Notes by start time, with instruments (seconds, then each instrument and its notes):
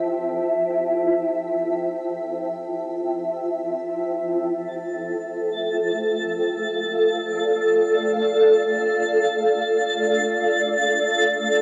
Already playing: ambient pad F4 C5 E5 G5 A5
4.52 ambient pad A4, synth texture A6
5.41 ambient pad F5
6.50 ambient pad D5